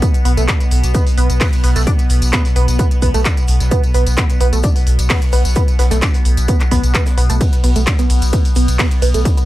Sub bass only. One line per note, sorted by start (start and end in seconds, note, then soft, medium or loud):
0.25 0.37 B1 loud
0.37 0.48 B1 medium
0.71 0.83 B1 loud
0.84 0.94 B1 medium
1.18 1.29 B1 loud
1.30 1.40 B1 medium
1.64 1.75 B1 loud
1.76 1.87 B1 medium
2.10 2.21 B1 loud
2.22 2.33 B1 medium
2.56 2.68 B1 loud
2.68 2.79 B1 medium
3.02 3.14 B1 loud
3.14 3.25 B1 medium
3.48 3.60 B1 loud
3.60 3.71 B1 medium
3.95 4.06 B1 loud
4.07 4.17 B1 medium
4.41 4.52 B1 loud
4.53 4.63 B1 medium
4.87 4.98 B1 loud
4.99 5.10 B1 medium
5.33 5.45 B1 loud
5.45 5.56 B1 medium
5.79 5.91 B1 loud
5.91 6.02 B1 medium
6.25 6.37 B1 loud
6.37 6.48 B1 medium
6.71 6.83 B1 loud
6.84 6.94 B1 medium
7.18 7.29 B1 loud
7.30 7.40 B1 medium
7.64 7.75 B1 loud
7.76 7.87 B1 medium
8.10 8.21 B1 loud
8.22 8.33 B1 medium
8.56 8.68 B1 loud
8.68 8.79 B1 medium
9.02 9.14 B1 loud
9.14 9.25 B1 medium